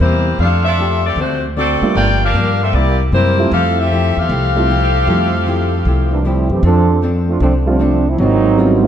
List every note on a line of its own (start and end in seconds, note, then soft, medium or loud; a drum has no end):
0.00 0.36 E2 medium
0.00 0.27 C3 medium
0.00 0.28 G3 soft
0.00 0.28 A#3 medium
0.00 0.37 A#3 medium
0.00 0.37 E4 medium
0.00 0.28 E4 medium
0.00 0.37 G4 medium
0.00 0.37 C5 medium
0.39 1.13 F2 medium
0.39 0.67 F3 soft
0.39 0.68 A3 soft
0.39 0.64 D4 medium
0.39 0.68 D4 soft
0.39 0.68 G4 soft
0.39 0.64 A4 medium
0.39 0.65 C5 medium
0.39 0.64 F5 medium
0.65 1.02 D4 medium
0.65 1.02 A4 medium
0.65 1.02 C5 medium
0.65 1.02 E5 medium
0.78 1.06 F3 medium
0.78 1.06 A3 medium
0.78 1.07 D4 medium
0.78 1.07 G4 medium
1.06 1.17 C4 medium
1.06 1.18 G4 medium
1.06 1.17 A4 medium
1.06 1.17 D5 medium
1.16 1.78 D2 medium
1.16 1.45 D3 soft
1.16 1.45 A3 soft
1.16 1.43 F#4 medium
1.16 1.43 C5 medium
1.20 1.43 A3 medium
1.20 1.46 C4 soft
1.20 1.43 D4 medium
1.20 1.46 F#4 medium
1.57 1.84 D3 medium
1.57 1.84 A3 medium
1.57 1.93 C4 medium
1.57 1.84 C4 medium
1.57 1.93 F#4 medium
1.57 1.85 F#4 medium
1.57 1.93 A4 medium
1.57 1.93 D5 medium
1.81 2.32 G3 medium
1.81 2.32 A3 medium
1.81 2.32 A#3 soft
1.81 2.32 D4 medium
1.81 2.32 F4 medium
1.81 muted upright bass stroke soft
1.95 2.32 G1 medium
1.95 2.23 G2 soft
1.95 2.24 F3 soft
1.95 2.24 A#3 medium
1.95 2.24 D4 medium
1.95 2.20 F4 medium
1.95 2.20 A#4 medium
1.95 2.20 D5 medium
1.95 2.20 G5 loud
2.24 2.59 D4 medium
2.24 2.59 G4 medium
2.24 2.59 A#4 medium
2.24 2.59 F5 medium
2.34 2.70 G2 medium
2.34 2.62 G2 medium
2.34 2.63 F3 medium
2.34 2.63 A#3 medium
2.34 2.63 D4 medium
2.62 2.74 C4 medium
2.62 2.74 F4 medium
2.62 2.73 A4 medium
2.62 2.74 E5 medium
2.73 3.09 C2 medium
2.73 3.01 C3 soft
2.73 3.02 G3 soft
2.73 3.00 A#3 medium
2.73 3.02 A#3 soft
2.73 3.00 E4 medium
2.73 3.00 G4 medium
2.73 3.00 D5 medium
2.78 3.03 E4 soft
3.12 3.48 F#2 medium
3.12 3.40 C3 medium
3.12 3.40 G3 medium
3.12 3.40 A#3 medium
3.12 3.50 A#3 medium
3.12 3.49 E4 medium
3.12 3.41 E4 medium
3.12 3.49 G4 medium
3.12 3.49 C5 medium
3.38 3.87 G3 medium
3.38 3.88 A3 medium
3.38 3.88 C4 soft
3.38 3.88 E4 soft
3.38 3.88 F4 medium
3.52 4.12 F2 medium
3.52 3.79 F3 soft
3.52 3.80 A3 soft
3.52 3.76 C4 medium
3.52 3.80 E4 soft
3.52 3.76 G4 medium
3.52 3.81 G4 soft
3.52 3.76 A4 medium
3.52 3.76 F5 loud
3.79 4.16 C4 medium
3.79 4.16 G4 medium
3.79 4.16 A4 medium
3.79 4.17 E5 loud
3.92 4.18 F3 medium
3.92 4.19 A3 medium
3.92 4.19 E4 medium
3.92 4.19 G4 medium
4.17 4.29 E2 medium
4.17 6.24 C4 medium
4.17 6.24 G4 medium
4.17 6.24 A4 medium
4.17 6.25 F5 medium
4.29 5.03 C2 medium
4.29 4.57 F3 soft
4.29 4.57 A3 medium
4.29 4.57 E4 soft
4.29 4.58 G4 medium
4.56 4.67 G3 medium
4.56 4.67 A3 medium
4.56 4.67 C4 medium
4.56 4.68 E4 medium
4.56 4.68 F4 medium
4.70 4.96 F3 medium
4.70 4.97 A3 medium
4.70 4.97 E4 medium
4.70 4.97 G4 medium
5.07 5.81 F2 medium
5.07 5.35 F3 medium
5.07 6.16 G3 medium
5.07 6.16 A3 medium
5.07 5.35 A3 medium
5.07 6.16 C4 medium
5.07 5.36 E4 medium
5.07 6.16 F4 medium
5.07 6.16 G4 soft
5.07 5.36 G4 medium
5.46 5.73 F3 medium
5.46 5.74 A3 medium
5.46 5.74 E4 medium
5.46 5.75 G4 medium
5.85 6.46 C2 medium
5.85 6.13 F3 soft
5.85 6.13 A3 medium
5.85 6.14 E4 medium
5.85 6.14 G4 medium
6.11 6.23 E3 medium
6.11 6.22 G3 medium
6.11 6.23 A#3 medium
6.11 6.23 D4 medium
6.23 6.52 F3 medium
6.23 6.49 G3 medium
6.23 6.49 A3 medium
6.23 6.52 A3 medium
6.23 6.49 C4 medium
6.23 6.50 E4 medium
6.23 6.52 E4 medium
6.23 6.53 G4 medium
6.50 6.62 F#2 medium
6.50 6.63 E3 medium
6.50 6.63 A3 medium
6.50 6.62 C4 medium
6.50 6.63 G4 medium
6.63 7.37 F2 medium
6.63 6.90 F3 soft
6.63 6.99 F3 medium
6.63 6.99 C4 medium
6.63 6.91 C4 soft
6.63 6.99 D4 medium
6.63 6.91 D4 soft
6.63 6.99 A4 medium
6.63 6.92 A4 soft
7.02 7.29 F3 medium
7.02 7.30 C4 medium
7.02 7.30 D4 medium
7.02 7.30 A4 medium
7.29 7.40 A3 medium
7.29 7.40 C4 medium
7.29 7.40 D4 medium
7.29 7.40 F4 medium
7.40 8.14 C2 medium
7.40 7.68 F3 soft
7.40 7.53 F3 medium
7.40 7.53 A3 medium
7.40 7.69 C4 soft
7.40 7.53 C4 medium
7.40 7.53 D4 medium
7.40 7.69 D4 medium
7.40 7.69 A4 medium
7.67 7.79 D3 medium
7.67 7.79 F3 medium
7.67 7.78 G3 medium
7.67 7.78 A3 medium
7.67 7.79 A3 medium
7.67 7.78 C4 medium
7.67 7.79 C4 medium
7.67 7.79 D4 medium
7.67 7.79 F4 medium
7.79 8.07 F3 medium
7.79 8.06 F3 medium
7.79 8.05 A3 medium
7.79 8.06 C4 medium
7.79 8.07 C4 medium
7.79 8.06 D4 medium
7.79 8.08 D4 medium
7.79 8.08 A4 medium
8.07 8.19 F3 medium
8.07 8.19 A3 medium
8.07 8.18 C4 medium
8.07 8.19 E4 medium
8.18 8.87 G#1 medium
8.18 8.46 G#2 soft
8.18 8.87 F#3 medium
8.18 8.47 F#3 soft
8.18 8.87 A#3 medium
8.18 8.87 C4 medium
8.18 8.47 C4 medium
8.18 8.87 D#4 loud
8.23 8.48 F4 medium
8.57 8.85 G#2 medium
8.57 8.85 F#3 medium
8.57 8.81 G3 medium
8.57 8.81 B3 medium
8.57 8.86 C4 medium
8.57 8.81 C#4 medium
8.57 8.81 E4 medium
8.57 8.86 F4 medium
8.57 8.81 F#4 medium
8.83 8.87 F#3 medium
8.83 8.87 A#3 soft
8.83 8.87 C4 medium
8.83 8.87 F4 medium